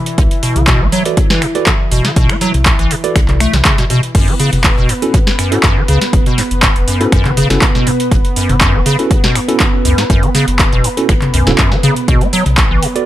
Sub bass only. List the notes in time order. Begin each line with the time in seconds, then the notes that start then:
0.18 B1
0.56 B1
0.81 A1
1.92 F#1
2.16 B1
2.54 B1
2.79 A1
3.16 B1
3.54 B1
4.15 F#1
4.53 F#1
4.78 E1
5.88 C#2
6.13 F#1
6.51 F#1
6.76 E1
7.12 F#1
7.50 F#1
8.12 F#1
8.49 F#1
8.74 E1
9.85 C#2
10.10 F#1
10.48 F#1
10.73 E1
11.09 F#1
11.34 B1
11.47 E1
12.08 B1
12.46 B1
12.71 A1